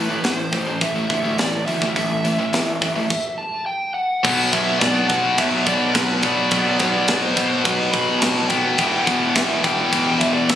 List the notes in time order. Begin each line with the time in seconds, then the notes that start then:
Already playing: A2 B4
0.09 A2 E3
0.24 A1 A2 E3 B4, snare, open hi-hat
0.35 C5
0.53 A1 A2 E3, kick, open hi-hat
0.67 A2 E3
0.81 A1 A2 E3 E5, kick, open hi-hat
0.96 A2 E3
1.10 D2 A2 E3, kick, open hi-hat
1.25 A2 E3
1.38 A1 A2 E3 D5, snare, open hi-hat
1.66 D2 A2 E3 E5, open hi-hat
1.82 A2 E3, kick
1.96 A1 A2 E3, kick, open hi-hat
2.24 A2 E3, open hi-hat
2.39 A2 E3
2.53 A1 A2 E3, snare, open hi-hat
2.82 A1 A2 E3, kick, open hi-hat
2.96 A2 E3
3.10 kick, crash
3.38 A5
3.66 G5
3.94 F#5
4.23 B1 B2 F#3 B3, kick, crash
4.52 B1 E5, kick, ride
4.79 B1 D5, kick, snare, ride
5.08 F#5, kick, ride
5.38 B1 E5, kick, ride
5.67 B1 D5, kick, ride
5.94 B1 B4, kick, snare, ride
6.23 B1 B2 F#3 B3 D5, kick, ride
6.51 B1 B2 F#3 B3, kick, ride
6.79 B1 D5, kick, ride
7.08 B1, kick, snare, ride
7.26 C5
7.35 B1 C5, kick, ride
7.64 B1 B4, kick, ride
7.92 B1 B5, kick, ride
8.20 B1 A5, kick, snare, ride
8.48 B1 B2 F#3 B3 G5, kick, ride
8.77 E1 E2 B2 E3, kick, ride
9.05 E1 F#5, kick, ride
9.34 E1 E5, kick, snare, ride
9.63 G5, kick, ride
9.93 E1, kick, ride
10.19 E1 E5, kick, ride
10.33 D5
10.49 E1 E5, kick, snare, ride